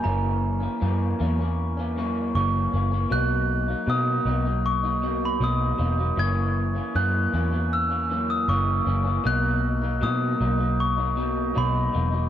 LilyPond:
<<
  \new Staff \with { instrumentName = "Glockenspiel" } { \time 4/4 \key b \major \tempo 4 = 78 ais''2 r4 cis'''4 | fis'''4 dis'''4 cis'''8. b''16 dis'''4 | gis'''4 fis'''4 e'''8. dis'''16 cis'''4 | fis'''4 dis'''4 cis'''4 b''4 | }
  \new Staff \with { instrumentName = "Clean electric guitar" } { \time 4/4 \key b \major <fis, e ais cis'>8. <e ais cis'>16 <fis, e ais cis'>8 <fis, e ais cis'>16 <e ais cis'>8 <e ais cis'>16 <fis, e ais cis'>8 <fis, e ais cis'>8 <fis, e ais cis'>16 <e ais cis'>16 | <b, fis ais dis'>8. <fis ais dis'>16 <b, fis ais dis'>8 <b, fis ais dis'>16 <fis ais dis'>8 <fis ais dis'>16 <b, fis ais dis'>8 <b, fis ais dis'>8 <b, fis ais dis'>16 <fis ais dis'>16 | <fis, e ais cis'>8. <e ais cis'>16 <fis, e ais cis'>8 <fis, e ais cis'>16 <e ais cis'>8 <e ais cis'>16 <fis, e ais cis'>8 <fis, e ais cis'>8 <fis, e ais cis'>16 <e ais cis'>16 | <b, fis ais dis'>8. <fis ais dis'>16 <b, fis ais dis'>8 <b, fis ais dis'>16 <fis ais dis'>8 <fis ais dis'>16 <b, fis ais dis'>8 <b, fis ais dis'>8 <b, fis ais dis'>16 <fis ais dis'>16 | }
  \new Staff \with { instrumentName = "Picked electric bass" } { \clef bass \time 4/4 \key b \major fis,,4 fis,8 e,4. fis,,8 fis,,8 | b,,4 b,8 b,,4. b,,8 e,,8 | fis,,4 fis,8 e,4. fis,,8 fis,,8 | b,,4 b,8 b,,4. b,,8 e,,8 | }
>>